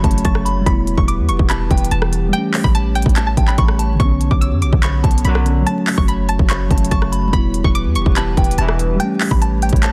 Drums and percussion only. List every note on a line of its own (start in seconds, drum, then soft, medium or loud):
0.04 kick medium
0.04 closed hi-hat soft
0.11 closed hi-hat medium
0.18 closed hi-hat medium
0.25 kick loud
0.25 closed hi-hat medium
0.35 cross-stick loud
0.46 closed hi-hat medium
0.66 kick loud
0.66 closed hi-hat medium
0.87 closed hi-hat medium
0.98 kick medium
1.08 closed hi-hat medium
1.29 closed hi-hat medium
1.39 kick medium
1.50 clap loud
1.50 closed hi-hat medium
1.71 kick medium
1.71 closed hi-hat soft
1.78 closed hi-hat medium
1.84 closed hi-hat medium
1.91 closed hi-hat medium
2.02 cross-stick loud
2.13 closed hi-hat medium
2.33 closed hi-hat medium
2.54 clap loud
2.54 open hi-hat medium
2.64 kick medium
2.75 closed hi-hat medium
2.95 closed hi-hat medium
3.02 kick medium
3.02 closed hi-hat medium
3.09 closed hi-hat soft
3.16 clap loud
3.16 closed hi-hat medium
3.37 kick medium
3.37 closed hi-hat medium
3.48 clap medium
3.58 kick loud
3.58 closed hi-hat medium
3.68 cross-stick loud
3.79 closed hi-hat medium
4.00 kick loud
4.00 closed hi-hat medium
4.21 closed hi-hat medium
4.31 kick medium
4.42 closed hi-hat medium
4.62 closed hi-hat medium
4.73 kick medium
4.83 clap loud
4.83 closed hi-hat medium
5.04 kick medium
5.04 closed hi-hat soft
5.11 closed hi-hat medium
5.18 closed hi-hat medium
5.25 closed hi-hat medium
5.35 cross-stick loud
5.46 closed hi-hat medium
5.67 closed hi-hat medium
5.87 clap loud
5.87 open hi-hat medium
5.98 kick medium
6.08 closed hi-hat medium
6.29 closed hi-hat medium
6.39 kick medium
6.50 clap loud
6.50 closed hi-hat medium
6.71 kick medium
6.71 closed hi-hat soft
6.78 closed hi-hat medium
6.85 closed hi-hat medium
6.91 kick loud
6.91 closed hi-hat medium
7.02 cross-stick loud
7.13 closed hi-hat medium
7.33 kick loud
7.33 closed hi-hat medium
7.54 closed hi-hat medium
7.64 kick medium
7.75 closed hi-hat medium
7.95 closed hi-hat medium
8.06 kick medium
8.16 clap loud
8.16 closed hi-hat medium
8.37 kick medium
8.37 closed hi-hat soft
8.44 closed hi-hat medium
8.51 closed hi-hat medium
8.58 closed hi-hat medium
8.69 cross-stick loud
8.79 closed hi-hat medium
9.00 closed hi-hat medium
9.21 clap loud
9.21 open hi-hat medium
9.31 kick medium
9.42 closed hi-hat medium
9.62 closed hi-hat medium
9.69 kick medium
9.69 closed hi-hat medium
9.76 closed hi-hat soft
9.83 clap loud
9.83 closed hi-hat medium